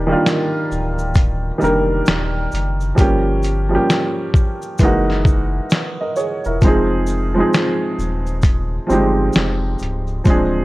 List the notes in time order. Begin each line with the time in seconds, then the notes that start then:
Already playing: D#1 D#3 G3 A#3 D4 G4
0.07 D#3 G3 A#3
0.11 D4 F4
0.26 snare, closed hi-hat, shaker
0.72 D1, shaker
0.99 shaker
1.15 kick, closed hi-hat, shaker
1.58 D#3 G3 A#3, shaker
1.62 F1 D4 A#4, shaker
2.06 D#1, snare, closed hi-hat, shaker
2.52 F#1, closed hi-hat, shaker
2.55 shaker
2.81 shaker
2.95 G1 F3 G3 A#3, kick, closed hi-hat, shaker
2.99 C#4 G4
3.43 closed hi-hat, shaker
3.45 shaker
3.69 F3 G3 A#3
3.74 C#4 G4
3.90 snare, closed hi-hat, shaker
4.34 kick, shaker
4.62 shaker
4.78 F#1 E3 G#3 A#3, kick, closed hi-hat, shaker
4.83 D#4 F#4
5.10 snare
5.25 kick, shaker
5.70 snare, closed hi-hat, shaker
6.01 A#4 D#5
6.16 G#4 C#5, shaker
6.19 shaker
6.44 E1 E4 A#4, shaker
6.61 F1 F3 G#3 C4, kick, closed hi-hat, shaker
6.66 D#4 G#4
7.07 shaker
7.08 shaker
7.34 F3 G#3 C4
7.39 D#4 G#4
7.53 snare, closed hi-hat, shaker
7.98 D#1, shaker
8.27 shaker
8.42 kick, closed hi-hat, shaker
8.87 G1 F3 G3 C4, shaker
8.91 G#3 D#4 G4, shaker
9.33 F1, snare, closed hi-hat, shaker
9.79 C#1, closed hi-hat, shaker
9.83 shaker
10.07 shaker
10.24 D1 F3 G#3 C4, kick, closed hi-hat, shaker
10.29 D4 G#4